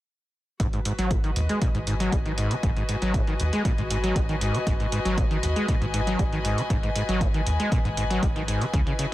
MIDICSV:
0, 0, Header, 1, 5, 480
1, 0, Start_track
1, 0, Key_signature, 5, "minor"
1, 0, Tempo, 508475
1, 565, Time_signature, 4, 2, 24, 8
1, 8625, End_track
2, 0, Start_track
2, 0, Title_t, "String section"
2, 0, Program_c, 0, 48
2, 567, Note_on_c, 0, 66, 71
2, 624, Note_on_c, 0, 71, 72
2, 1156, Note_on_c, 0, 75, 76
2, 1636, Note_on_c, 0, 80, 65
2, 8246, Note_on_c, 0, 64, 79
2, 8625, Note_off_c, 0, 64, 0
2, 8625, Note_off_c, 0, 66, 0
2, 8625, Note_off_c, 0, 71, 0
2, 8625, Note_off_c, 0, 75, 0
2, 8625, Note_off_c, 0, 80, 0
2, 8625, End_track
3, 0, Start_track
3, 0, Title_t, "Acid bass"
3, 0, Program_c, 1, 38
3, 566, Note_on_c, 1, 44, 81
3, 634, Note_off_c, 1, 44, 0
3, 691, Note_on_c, 1, 44, 69
3, 754, Note_off_c, 1, 44, 0
3, 805, Note_on_c, 1, 44, 75
3, 874, Note_off_c, 1, 44, 0
3, 930, Note_on_c, 1, 54, 98
3, 1046, Note_on_c, 1, 44, 77
3, 1060, Note_off_c, 1, 54, 0
3, 1114, Note_off_c, 1, 44, 0
3, 1170, Note_on_c, 1, 51, 77
3, 1233, Note_off_c, 1, 51, 0
3, 1285, Note_on_c, 1, 32, 97
3, 1327, Note_off_c, 1, 32, 0
3, 1410, Note_on_c, 1, 56, 69
3, 1505, Note_off_c, 1, 56, 0
3, 1524, Note_on_c, 1, 46, 80
3, 1594, Note_off_c, 1, 46, 0
3, 1649, Note_on_c, 1, 44, 97
3, 1688, Note_off_c, 1, 44, 0
3, 1765, Note_on_c, 1, 44, 76
3, 1834, Note_off_c, 1, 44, 0
3, 1889, Note_on_c, 1, 54, 96
3, 2006, Note_on_c, 1, 56, 80
3, 2020, Note_off_c, 1, 54, 0
3, 2047, Note_off_c, 1, 56, 0
3, 2131, Note_on_c, 1, 51, 75
3, 2194, Note_off_c, 1, 51, 0
3, 2246, Note_on_c, 1, 44, 73
3, 2371, Note_on_c, 1, 49, 79
3, 2385, Note_off_c, 1, 44, 0
3, 2409, Note_off_c, 1, 49, 0
3, 2487, Note_on_c, 1, 44, 78
3, 2555, Note_off_c, 1, 44, 0
3, 2611, Note_on_c, 1, 44, 71
3, 2674, Note_off_c, 1, 44, 0
3, 2727, Note_on_c, 1, 44, 73
3, 2795, Note_off_c, 1, 44, 0
3, 2852, Note_on_c, 1, 54, 95
3, 2967, Note_on_c, 1, 44, 80
3, 2981, Note_off_c, 1, 54, 0
3, 3035, Note_off_c, 1, 44, 0
3, 3092, Note_on_c, 1, 51, 78
3, 3154, Note_off_c, 1, 51, 0
3, 3208, Note_on_c, 1, 32, 97
3, 3248, Note_off_c, 1, 32, 0
3, 3332, Note_on_c, 1, 56, 73
3, 3426, Note_off_c, 1, 56, 0
3, 3446, Note_on_c, 1, 46, 82
3, 3515, Note_off_c, 1, 46, 0
3, 3570, Note_on_c, 1, 44, 99
3, 3608, Note_off_c, 1, 44, 0
3, 3686, Note_on_c, 1, 44, 75
3, 3754, Note_off_c, 1, 44, 0
3, 3810, Note_on_c, 1, 54, 92
3, 3925, Note_on_c, 1, 56, 74
3, 3939, Note_off_c, 1, 54, 0
3, 3967, Note_off_c, 1, 56, 0
3, 4049, Note_on_c, 1, 51, 79
3, 4113, Note_off_c, 1, 51, 0
3, 4165, Note_on_c, 1, 44, 73
3, 4291, Note_on_c, 1, 49, 74
3, 4305, Note_off_c, 1, 44, 0
3, 4329, Note_off_c, 1, 49, 0
3, 4406, Note_on_c, 1, 44, 76
3, 4475, Note_off_c, 1, 44, 0
3, 4530, Note_on_c, 1, 44, 68
3, 4594, Note_off_c, 1, 44, 0
3, 4646, Note_on_c, 1, 44, 76
3, 4714, Note_off_c, 1, 44, 0
3, 4769, Note_on_c, 1, 54, 98
3, 4886, Note_on_c, 1, 44, 82
3, 4900, Note_off_c, 1, 54, 0
3, 4954, Note_off_c, 1, 44, 0
3, 5010, Note_on_c, 1, 51, 79
3, 5074, Note_off_c, 1, 51, 0
3, 5125, Note_on_c, 1, 32, 95
3, 5167, Note_off_c, 1, 32, 0
3, 5250, Note_on_c, 1, 56, 71
3, 5346, Note_off_c, 1, 56, 0
3, 5365, Note_on_c, 1, 46, 81
3, 5434, Note_off_c, 1, 46, 0
3, 5490, Note_on_c, 1, 44, 93
3, 5528, Note_off_c, 1, 44, 0
3, 5606, Note_on_c, 1, 44, 75
3, 5674, Note_off_c, 1, 44, 0
3, 5730, Note_on_c, 1, 54, 96
3, 5847, Note_on_c, 1, 56, 76
3, 5861, Note_off_c, 1, 54, 0
3, 5887, Note_off_c, 1, 56, 0
3, 5971, Note_on_c, 1, 51, 77
3, 6034, Note_off_c, 1, 51, 0
3, 6086, Note_on_c, 1, 44, 74
3, 6210, Note_on_c, 1, 49, 77
3, 6224, Note_off_c, 1, 44, 0
3, 6248, Note_off_c, 1, 49, 0
3, 6326, Note_on_c, 1, 44, 76
3, 6394, Note_off_c, 1, 44, 0
3, 6449, Note_on_c, 1, 44, 71
3, 6513, Note_off_c, 1, 44, 0
3, 6565, Note_on_c, 1, 44, 74
3, 6634, Note_off_c, 1, 44, 0
3, 6690, Note_on_c, 1, 54, 97
3, 6806, Note_on_c, 1, 44, 83
3, 6820, Note_off_c, 1, 54, 0
3, 6874, Note_off_c, 1, 44, 0
3, 6931, Note_on_c, 1, 51, 76
3, 6994, Note_off_c, 1, 51, 0
3, 7046, Note_on_c, 1, 32, 94
3, 7087, Note_off_c, 1, 32, 0
3, 7171, Note_on_c, 1, 56, 73
3, 7266, Note_off_c, 1, 56, 0
3, 7285, Note_on_c, 1, 46, 84
3, 7354, Note_off_c, 1, 46, 0
3, 7410, Note_on_c, 1, 44, 96
3, 7448, Note_off_c, 1, 44, 0
3, 7526, Note_on_c, 1, 44, 78
3, 7594, Note_off_c, 1, 44, 0
3, 7650, Note_on_c, 1, 54, 94
3, 7765, Note_on_c, 1, 56, 81
3, 7780, Note_off_c, 1, 54, 0
3, 7807, Note_off_c, 1, 56, 0
3, 7890, Note_on_c, 1, 51, 77
3, 7954, Note_off_c, 1, 51, 0
3, 8005, Note_on_c, 1, 44, 72
3, 8130, Note_on_c, 1, 49, 76
3, 8144, Note_off_c, 1, 44, 0
3, 8168, Note_off_c, 1, 49, 0
3, 8245, Note_on_c, 1, 49, 77
3, 8314, Note_off_c, 1, 49, 0
3, 8370, Note_on_c, 1, 49, 73
3, 8434, Note_off_c, 1, 49, 0
3, 8486, Note_on_c, 1, 49, 75
3, 8554, Note_off_c, 1, 49, 0
3, 8625, End_track
4, 0, Start_track
4, 0, Title_t, "Sub bass"
4, 0, Program_c, 2, 38
4, 565, Note_on_c, 2, 32, 96
4, 668, Note_off_c, 2, 32, 0
4, 929, Note_on_c, 2, 32, 84
4, 1253, Note_off_c, 2, 32, 0
4, 1285, Note_on_c, 2, 39, 82
4, 1388, Note_off_c, 2, 39, 0
4, 1650, Note_on_c, 2, 32, 88
4, 1973, Note_off_c, 2, 32, 0
4, 2005, Note_on_c, 2, 32, 85
4, 2335, Note_off_c, 2, 32, 0
4, 2485, Note_on_c, 2, 32, 96
4, 2588, Note_off_c, 2, 32, 0
4, 2850, Note_on_c, 2, 32, 84
4, 3173, Note_off_c, 2, 32, 0
4, 3205, Note_on_c, 2, 39, 84
4, 3308, Note_off_c, 2, 39, 0
4, 3570, Note_on_c, 2, 32, 90
4, 3894, Note_off_c, 2, 32, 0
4, 3925, Note_on_c, 2, 32, 90
4, 4255, Note_off_c, 2, 32, 0
4, 4406, Note_on_c, 2, 32, 98
4, 4509, Note_off_c, 2, 32, 0
4, 4771, Note_on_c, 2, 32, 88
4, 5094, Note_off_c, 2, 32, 0
4, 5126, Note_on_c, 2, 39, 77
4, 5229, Note_off_c, 2, 39, 0
4, 5491, Note_on_c, 2, 32, 88
4, 5814, Note_off_c, 2, 32, 0
4, 5846, Note_on_c, 2, 32, 91
4, 6175, Note_off_c, 2, 32, 0
4, 6325, Note_on_c, 2, 32, 92
4, 6428, Note_off_c, 2, 32, 0
4, 6690, Note_on_c, 2, 32, 85
4, 7013, Note_off_c, 2, 32, 0
4, 7046, Note_on_c, 2, 39, 82
4, 7149, Note_off_c, 2, 39, 0
4, 7410, Note_on_c, 2, 32, 84
4, 7734, Note_off_c, 2, 32, 0
4, 7765, Note_on_c, 2, 32, 89
4, 8095, Note_off_c, 2, 32, 0
4, 8245, Note_on_c, 2, 37, 102
4, 8348, Note_off_c, 2, 37, 0
4, 8625, End_track
5, 0, Start_track
5, 0, Title_t, "Drums"
5, 565, Note_on_c, 9, 36, 106
5, 565, Note_on_c, 9, 42, 52
5, 659, Note_off_c, 9, 36, 0
5, 660, Note_off_c, 9, 42, 0
5, 690, Note_on_c, 9, 42, 24
5, 785, Note_off_c, 9, 42, 0
5, 806, Note_on_c, 9, 42, 83
5, 900, Note_off_c, 9, 42, 0
5, 930, Note_on_c, 9, 42, 51
5, 1025, Note_off_c, 9, 42, 0
5, 1045, Note_on_c, 9, 36, 116
5, 1045, Note_on_c, 9, 42, 51
5, 1139, Note_off_c, 9, 42, 0
5, 1140, Note_off_c, 9, 36, 0
5, 1170, Note_on_c, 9, 42, 28
5, 1264, Note_off_c, 9, 42, 0
5, 1285, Note_on_c, 9, 42, 92
5, 1379, Note_off_c, 9, 42, 0
5, 1409, Note_on_c, 9, 42, 49
5, 1504, Note_off_c, 9, 42, 0
5, 1525, Note_on_c, 9, 36, 114
5, 1525, Note_on_c, 9, 42, 53
5, 1619, Note_off_c, 9, 36, 0
5, 1619, Note_off_c, 9, 42, 0
5, 1650, Note_on_c, 9, 42, 26
5, 1744, Note_off_c, 9, 42, 0
5, 1765, Note_on_c, 9, 42, 89
5, 1859, Note_off_c, 9, 42, 0
5, 1890, Note_on_c, 9, 42, 50
5, 1984, Note_off_c, 9, 42, 0
5, 2005, Note_on_c, 9, 36, 110
5, 2006, Note_on_c, 9, 42, 52
5, 2099, Note_off_c, 9, 36, 0
5, 2100, Note_off_c, 9, 42, 0
5, 2130, Note_on_c, 9, 42, 23
5, 2224, Note_off_c, 9, 42, 0
5, 2244, Note_on_c, 9, 42, 89
5, 2338, Note_off_c, 9, 42, 0
5, 2369, Note_on_c, 9, 42, 51
5, 2463, Note_off_c, 9, 42, 0
5, 2485, Note_on_c, 9, 36, 121
5, 2485, Note_on_c, 9, 42, 51
5, 2579, Note_off_c, 9, 36, 0
5, 2580, Note_off_c, 9, 42, 0
5, 2610, Note_on_c, 9, 42, 25
5, 2705, Note_off_c, 9, 42, 0
5, 2726, Note_on_c, 9, 42, 86
5, 2820, Note_off_c, 9, 42, 0
5, 2850, Note_on_c, 9, 42, 47
5, 2944, Note_off_c, 9, 42, 0
5, 2965, Note_on_c, 9, 36, 119
5, 2966, Note_on_c, 9, 42, 50
5, 3060, Note_off_c, 9, 36, 0
5, 3060, Note_off_c, 9, 42, 0
5, 3091, Note_on_c, 9, 42, 26
5, 3185, Note_off_c, 9, 42, 0
5, 3206, Note_on_c, 9, 42, 87
5, 3300, Note_off_c, 9, 42, 0
5, 3331, Note_on_c, 9, 42, 47
5, 3425, Note_off_c, 9, 42, 0
5, 3445, Note_on_c, 9, 36, 111
5, 3446, Note_on_c, 9, 42, 51
5, 3540, Note_off_c, 9, 36, 0
5, 3541, Note_off_c, 9, 42, 0
5, 3571, Note_on_c, 9, 42, 25
5, 3665, Note_off_c, 9, 42, 0
5, 3686, Note_on_c, 9, 42, 83
5, 3781, Note_off_c, 9, 42, 0
5, 3811, Note_on_c, 9, 42, 50
5, 3905, Note_off_c, 9, 42, 0
5, 3925, Note_on_c, 9, 36, 120
5, 3926, Note_on_c, 9, 42, 50
5, 4020, Note_off_c, 9, 36, 0
5, 4020, Note_off_c, 9, 42, 0
5, 4051, Note_on_c, 9, 42, 25
5, 4145, Note_off_c, 9, 42, 0
5, 4166, Note_on_c, 9, 42, 88
5, 4261, Note_off_c, 9, 42, 0
5, 4291, Note_on_c, 9, 42, 47
5, 4385, Note_off_c, 9, 42, 0
5, 4406, Note_on_c, 9, 36, 116
5, 4407, Note_on_c, 9, 42, 50
5, 4500, Note_off_c, 9, 36, 0
5, 4501, Note_off_c, 9, 42, 0
5, 4532, Note_on_c, 9, 42, 23
5, 4626, Note_off_c, 9, 42, 0
5, 4647, Note_on_c, 9, 42, 80
5, 4741, Note_off_c, 9, 42, 0
5, 4771, Note_on_c, 9, 42, 47
5, 4866, Note_off_c, 9, 42, 0
5, 4886, Note_on_c, 9, 36, 115
5, 4887, Note_on_c, 9, 42, 49
5, 4980, Note_off_c, 9, 36, 0
5, 4981, Note_off_c, 9, 42, 0
5, 5011, Note_on_c, 9, 42, 25
5, 5106, Note_off_c, 9, 42, 0
5, 5127, Note_on_c, 9, 42, 84
5, 5221, Note_off_c, 9, 42, 0
5, 5251, Note_on_c, 9, 42, 48
5, 5345, Note_off_c, 9, 42, 0
5, 5366, Note_on_c, 9, 36, 110
5, 5366, Note_on_c, 9, 42, 50
5, 5460, Note_off_c, 9, 36, 0
5, 5461, Note_off_c, 9, 42, 0
5, 5491, Note_on_c, 9, 42, 24
5, 5586, Note_off_c, 9, 42, 0
5, 5606, Note_on_c, 9, 42, 83
5, 5700, Note_off_c, 9, 42, 0
5, 5731, Note_on_c, 9, 42, 47
5, 5825, Note_off_c, 9, 42, 0
5, 5846, Note_on_c, 9, 36, 122
5, 5846, Note_on_c, 9, 42, 44
5, 5940, Note_off_c, 9, 36, 0
5, 5941, Note_off_c, 9, 42, 0
5, 5971, Note_on_c, 9, 42, 23
5, 6066, Note_off_c, 9, 42, 0
5, 6087, Note_on_c, 9, 42, 88
5, 6181, Note_off_c, 9, 42, 0
5, 6211, Note_on_c, 9, 42, 49
5, 6306, Note_off_c, 9, 42, 0
5, 6326, Note_on_c, 9, 36, 117
5, 6327, Note_on_c, 9, 42, 49
5, 6420, Note_off_c, 9, 36, 0
5, 6421, Note_off_c, 9, 42, 0
5, 6451, Note_on_c, 9, 42, 22
5, 6546, Note_off_c, 9, 42, 0
5, 6566, Note_on_c, 9, 42, 79
5, 6660, Note_off_c, 9, 42, 0
5, 6691, Note_on_c, 9, 42, 47
5, 6785, Note_off_c, 9, 42, 0
5, 6806, Note_on_c, 9, 36, 115
5, 6807, Note_on_c, 9, 42, 47
5, 6900, Note_off_c, 9, 36, 0
5, 6902, Note_off_c, 9, 42, 0
5, 6932, Note_on_c, 9, 42, 25
5, 7026, Note_off_c, 9, 42, 0
5, 7047, Note_on_c, 9, 42, 82
5, 7141, Note_off_c, 9, 42, 0
5, 7172, Note_on_c, 9, 42, 45
5, 7266, Note_off_c, 9, 42, 0
5, 7286, Note_on_c, 9, 36, 115
5, 7288, Note_on_c, 9, 42, 49
5, 7380, Note_off_c, 9, 36, 0
5, 7382, Note_off_c, 9, 42, 0
5, 7412, Note_on_c, 9, 42, 23
5, 7507, Note_off_c, 9, 42, 0
5, 7527, Note_on_c, 9, 42, 78
5, 7621, Note_off_c, 9, 42, 0
5, 7652, Note_on_c, 9, 42, 47
5, 7746, Note_off_c, 9, 42, 0
5, 7766, Note_on_c, 9, 36, 117
5, 7767, Note_on_c, 9, 42, 48
5, 7860, Note_off_c, 9, 36, 0
5, 7861, Note_off_c, 9, 42, 0
5, 7892, Note_on_c, 9, 42, 23
5, 7986, Note_off_c, 9, 42, 0
5, 8007, Note_on_c, 9, 42, 84
5, 8102, Note_off_c, 9, 42, 0
5, 8132, Note_on_c, 9, 42, 45
5, 8226, Note_off_c, 9, 42, 0
5, 8245, Note_on_c, 9, 36, 115
5, 8247, Note_on_c, 9, 42, 47
5, 8340, Note_off_c, 9, 36, 0
5, 8341, Note_off_c, 9, 42, 0
5, 8371, Note_on_c, 9, 42, 24
5, 8466, Note_off_c, 9, 42, 0
5, 8486, Note_on_c, 9, 42, 78
5, 8580, Note_off_c, 9, 42, 0
5, 8625, End_track
0, 0, End_of_file